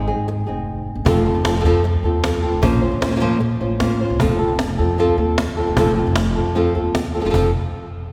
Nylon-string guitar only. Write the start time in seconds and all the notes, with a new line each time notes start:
0.08 C4 D#4 G#4
0.28 muted nylon-string guitar stroke
0.47 C4 D#4 G#4
1.05 F3 C4 F4 A4
1.25 C4 F4 A4
1.45 C4 F4 A4
1.56 F3 C4 F4 A4
1.60 F3 C4 F4 A4
1.65 F3 C4 F4 A4
1.84 muted nylon-string guitar stroke
2.04 C4 F4 A4
2.23 F3 C4 F4 A4
2.42 C4 F4 A4
2.62 F3 A#3 C#4 F4 C5
2.81 C#4 F4 C5
3.01 C#4 F4 C5
3.07 A#3 C#4 F4 C5
3.11 A#3 C#4 F4 C5
3.16 A#3 C#4 F4 C5
3.20 F3 A#3 C#4 F4 C5
3.40 muted nylon-string guitar stroke
3.61 C#4 F4 C5
3.81 A#3 C#4 F4 C5
4.01 C#4 F4 C5
4.20 F3 C4 F4 A4
4.39 C4 F4 A4
4.59 muted nylon-string guitar stroke
4.78 C4 F4 A4
4.98 F3 C4 F4 A4
5.18 F4 A4
5.38 muted nylon-string guitar stroke
5.57 C4 F4 A4
5.77 F3 C4 F4 A4
5.95 C4 F4 A4
6.15 muted nylon-string guitar stroke
6.36 C4 F4 A4
6.55 F3 C4 F4 A4
6.75 C4 F4 A4
6.95 muted nylon-string guitar stroke
7.15 C4 F4 A4
7.20 F3 C4 F4 A4
7.25 F3 C4 F4 A4
7.30 F3 C4 F4 A4
7.34 F3 C4 F4 A4